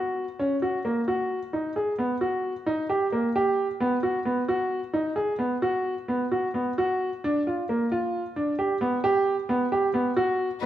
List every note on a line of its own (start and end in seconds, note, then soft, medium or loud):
0.00 0.24 F#4 medium
0.39 0.54 C#4 medium
0.62 0.77 F#4 medium
0.85 1.00 A#3 medium
1.08 1.38 F#4 medium
1.53 1.68 D#4 medium
1.76 1.91 G#4 medium
1.99 2.14 B3 medium
2.21 2.51 F#4 medium
2.66 2.82 D#4 medium
2.90 3.05 G4 medium
3.12 3.28 A#3 medium
3.36 3.66 G4 medium
3.80 3.96 B3 medium
4.03 4.18 F#4 medium
4.25 4.41 B3 medium
4.48 4.79 F#4 medium
4.94 5.09 D#4 medium
5.16 5.31 G#4 medium
5.39 5.54 B3 medium
5.62 5.93 F#4 medium
6.08 6.24 B3 medium
6.32 6.47 F#4 medium
6.54 6.70 B3 medium
6.78 7.08 F#4 medium
7.24 7.39 D4 medium
7.47 7.62 F4 medium
7.69 7.84 A#3 medium
7.92 8.22 F4 medium
8.36 8.52 D4 medium
8.59 8.74 G4 medium
8.81 8.96 B3 medium
9.04 9.34 G4 medium
9.49 9.64 B3 medium
9.72 9.87 G4 medium
9.94 10.09 B3 medium
10.17 10.47 F#4 medium
10.62 10.66 B3 medium